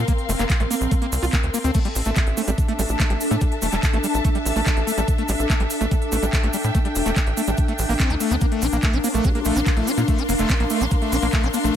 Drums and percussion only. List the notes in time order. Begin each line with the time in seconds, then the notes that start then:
0.08 kick, closed hi-hat, shaker
0.18 closed hi-hat
0.29 open hi-hat, shaker
0.39 clap, closed hi-hat, shaker
0.49 kick, clap, closed hi-hat, shaker
0.60 closed hi-hat
0.70 open hi-hat, shaker
0.81 closed hi-hat, shaker
0.91 kick, closed hi-hat, shaker
1.02 closed hi-hat
1.12 open hi-hat, shaker
1.23 open hi-hat, shaker
1.33 kick, clap, closed hi-hat, shaker
1.43 closed hi-hat
1.54 open hi-hat, shaker
1.64 closed hi-hat, shaker
1.74 kick, closed hi-hat, crash, shaker
1.85 closed hi-hat
1.95 open hi-hat, shaker
2.05 closed hi-hat, shaker
2.16 kick, clap, closed hi-hat, shaker
2.27 closed hi-hat
2.37 open hi-hat, shaker
2.48 closed hi-hat, shaker
2.58 kick, closed hi-hat, shaker
2.68 closed hi-hat
2.79 open hi-hat, shaker
2.89 closed hi-hat, shaker
3.00 kick, clap, closed hi-hat, shaker
3.10 closed hi-hat
3.20 open hi-hat, shaker
3.31 closed hi-hat, shaker
3.41 kick, closed hi-hat, shaker
3.52 closed hi-hat
3.62 open hi-hat, shaker
3.72 clap, closed hi-hat, shaker
3.83 kick, clap, closed hi-hat, shaker
3.93 closed hi-hat
4.04 open hi-hat, shaker
4.14 closed hi-hat, shaker
4.25 kick, closed hi-hat, shaker
4.35 closed hi-hat
4.45 open hi-hat, shaker
4.56 open hi-hat, shaker
4.66 kick, clap, closed hi-hat, shaker
4.77 closed hi-hat
4.87 open hi-hat, shaker
4.98 closed hi-hat, shaker
5.08 kick, closed hi-hat, shaker
5.18 closed hi-hat
5.28 open hi-hat, shaker
5.39 closed hi-hat, shaker
5.50 kick, clap, closed hi-hat, shaker
5.60 closed hi-hat
5.70 open hi-hat, shaker
5.81 closed hi-hat, shaker
5.91 kick, closed hi-hat, shaker
6.02 closed hi-hat
6.12 open hi-hat, shaker
6.23 closed hi-hat, shaker
6.33 kick, clap, closed hi-hat, shaker
6.43 closed hi-hat
6.53 open hi-hat, shaker
6.64 closed hi-hat, shaker
6.75 kick, closed hi-hat, shaker
6.85 closed hi-hat
6.95 open hi-hat, shaker
7.06 clap, closed hi-hat, shaker
7.16 kick, clap, closed hi-hat, shaker
7.27 closed hi-hat
7.37 open hi-hat, shaker
7.47 closed hi-hat, shaker
7.57 kick, closed hi-hat, shaker
7.68 closed hi-hat
7.78 open hi-hat, shaker
7.89 open hi-hat, shaker
8.00 kick, clap, closed hi-hat, shaker
8.10 closed hi-hat
8.20 open hi-hat, shaker
8.31 closed hi-hat, shaker
8.41 kick, closed hi-hat, shaker
8.52 closed hi-hat
8.62 open hi-hat, shaker
8.73 closed hi-hat, shaker
8.83 kick, clap, closed hi-hat, shaker
8.93 closed hi-hat
9.04 open hi-hat, shaker
9.14 closed hi-hat, shaker
9.24 kick, closed hi-hat, shaker
9.35 closed hi-hat
9.45 open hi-hat, shaker
9.56 closed hi-hat, shaker
9.66 kick, clap, closed hi-hat, shaker
9.77 closed hi-hat
9.87 open hi-hat, shaker
9.97 closed hi-hat, shaker
10.08 kick, closed hi-hat, shaker
10.18 closed hi-hat
10.29 open hi-hat, shaker
10.38 clap, closed hi-hat, shaker
10.49 kick, clap, closed hi-hat, shaker
10.60 closed hi-hat
10.70 open hi-hat, shaker
10.81 closed hi-hat, shaker
10.91 kick, closed hi-hat, shaker
11.02 closed hi-hat
11.12 open hi-hat, shaker
11.22 open hi-hat, shaker
11.33 kick, clap, closed hi-hat, shaker
11.43 closed hi-hat
11.54 open hi-hat, shaker
11.64 closed hi-hat, shaker